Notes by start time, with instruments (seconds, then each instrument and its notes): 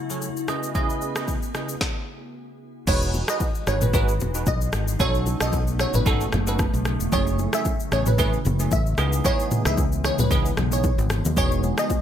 Already playing: ambient pad C#3 A3 E4 F#4
0.10 tine electric piano F#3 E4 G#4 A4 C#5, shaker
0.22 shaker
0.37 shaker
0.48 tine electric piano C#3 E4 G#4 B4 D#5, ambient pad B3 G#4, cross-stick, shaker
0.63 shaker
0.75 tine electric piano C#3 E4 G#4 B4 D#5, kick, shaker
0.90 shaker
1.01 shaker
1.16 tine electric piano C#3 E4 G#4 B4 D#5, cross-stick, shaker
1.28 kick, shaker
1.42 shaker
1.54 tine electric piano C#3 E4 G#4 B4 D#5, cross-stick, shaker
1.69 shaker
1.81 kick, snare
2.87 fingered electric bass E1, ambient pad E3 G#3 D#4 F#4, tine electric piano D#4 F#4 G#4 B4, synth pluck C#5, kick, crash, low conga, shaker
3.02 shaker
3.14 high bongo, low bongo, shaker
3.28 tine electric piano D#4 F#4 G#4 B4, synth pluck D#5, cross-stick, shaker
3.40 kick, high bongo, shaker
3.55 shaker
3.67 fingered electric bass G#1, tine electric piano D#4 F#4 G#4 B4, synth pluck C#5, cross-stick, shaker
3.81 synth pluck B4, mid tom, low bongo, shaker
3.93 tine electric piano D#4 F#4 G#4 B4, synth pluck B4, kick, low conga, shaker
4.08 shaker
4.20 fingered electric bass E1, low bongo, low conga, shaker
4.35 tine electric piano D#4 F#4 G#4 B4, shaker
4.46 fingered electric bass B1, synth pluck D#5, kick, high bongo, shaker
4.61 shaker
4.73 fingered electric bass G#1, cross-stick, shaker
4.88 shaker
4.99 fingered electric bass B1, ambient pad C#3 A3 B3, tine electric piano C#4 D#4 F#4 A4, synth pluck C#5, kick, low conga, shaker
5.15 shaker
5.26 high bongo, low bongo, shaker
5.40 fingered electric bass B1, tine electric piano C#4 D#4 F#4 A4, synth pluck D#5, cross-stick, shaker
5.53 kick, high bongo, shaker
5.67 shaker
5.79 tine electric piano C#4 D#4 F#4 A4, synth pluck C#5, cross-stick, shaker
5.94 fingered electric bass G#1, synth pluck B4, mid tom, low bongo, shaker
6.06 tine electric piano C#4 D#4 F#4 A4, synth pluck A4, kick, low conga, shaker
6.21 shaker
6.32 fingered electric bass F#1, cross-stick, low bongo, low conga, shaker
6.47 tine electric piano C#4 D#4 F#4 A4, synth pluck B4, shaker
6.59 kick, cross-stick, high bongo, shaker
6.74 fingered electric bass B1, shaker
6.85 cross-stick, shaker
7.00 fingered electric bass E1, shaker
7.12 fingered electric bass F#1, ambient pad E3 F#3, tine electric piano A3 C#4 E4 G#4, synth pluck C#5, kick, low conga, shaker
7.27 shaker
7.39 high bongo, low bongo, shaker
7.53 tine electric piano A3 C#4 E4 G#4, synth pluck E5, cross-stick, shaker
7.65 kick, high bongo, shaker
7.80 shaker
7.92 fingered electric bass A1, tine electric piano A3 C#4 E4 G#4, synth pluck C#5, cross-stick, shaker
8.06 synth pluck B4, mid tom, low bongo, shaker
8.18 tine electric piano A3 C#4 E4 G#4, synth pluck B4, kick, low conga, shaker
8.33 shaker
8.45 fingered electric bass F#1, low bongo, low conga, shaker
8.59 tine electric piano A3 C#4 E4 G#4, shaker
8.71 fingered electric bass A1, synth pluck E5, kick, high bongo, shaker
8.86 shaker
8.98 fingered electric bass C#2, ambient pad G#3 B3, tine electric piano B3 D#4 E4 G#4, cross-stick, shaker
9.13 shaker
9.24 tine electric piano B3 D#4 E4 G#4, synth pluck C#5, kick, low conga, shaker
9.40 shaker
9.51 mid tom, high bongo, low bongo, shaker
9.65 fingered electric bass C#2, tine electric piano B3 D#4 E4 G#4, synth pluck E5, cross-stick, shaker
9.78 kick, high bongo, shaker
9.92 shaker
10.04 tine electric piano B3 D#4 E4 G#4, synth pluck C#5, cross-stick, shaker
10.19 fingered electric bass C#2, synth pluck B4, mid tom, low bongo, shaker
10.30 tine electric piano B3 D#4 E4 G#4, synth pluck B4, kick, low conga, shaker
10.46 shaker
10.57 fingered electric bass B1, cross-stick, low bongo, low conga, shaker
10.72 tine electric piano B3 D#4 E4 G#4, synth pluck C#5, shaker
10.84 kick, high bongo, shaker
10.98 fingered electric bass G#1, shaker
11.10 cross-stick, shaker
11.25 fingered electric bass D#2, low bongo, shaker
11.36 fingered electric bass E1, ambient pad E3 D#4 F#4, tine electric piano B3 D#4 F#4 G#4, synth pluck C#5, kick, low conga, shaker
11.52 shaker
11.63 high bongo, low bongo, shaker
11.78 tine electric piano B3 D#4 F#4 G#4, synth pluck D#5, cross-stick, shaker
11.90 kick, high bongo, shaker